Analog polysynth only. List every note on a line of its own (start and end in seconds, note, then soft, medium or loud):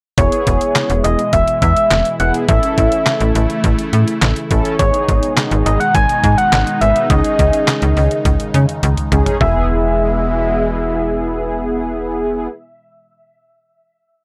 0.18 1.20 B3 medium
0.18 1.20 E4 medium
0.18 1.20 G#4 medium
2.20 2.45 B3 medium
2.20 2.45 E4 medium
2.20 2.45 G#4 medium
2.49 3.51 C#4 medium
2.49 3.51 E4 medium
2.49 3.51 A4 medium
4.50 4.76 C#4 loud
4.50 4.76 E4 medium
4.50 4.76 A4 loud
4.79 5.82 B3 medium
4.79 5.82 D#4 medium
4.79 5.82 G#4 medium
6.81 7.07 B3 medium
6.81 7.07 D#4 medium
6.81 7.07 B4 medium
7.10 8.13 C#4 medium
7.10 8.13 D#4 medium
7.10 8.13 G#4 medium
9.12 9.38 C#4 medium
9.12 9.38 D#4 medium
9.12 9.38 G#4 loud
9.41 12.48 B3 medium
9.41 12.48 E4 medium
9.41 12.47 G#4 loud